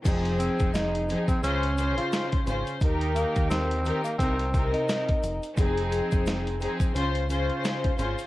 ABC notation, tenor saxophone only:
X:1
M:4/4
L:1/16
Q:"Swing 16ths" 1/4=87
K:Fm
V:1 name="Tenor saxophone"
z2 C2 E3 C D3 F2 z3 | z2 B,2 C3 B, C3 E4- E | z16 |]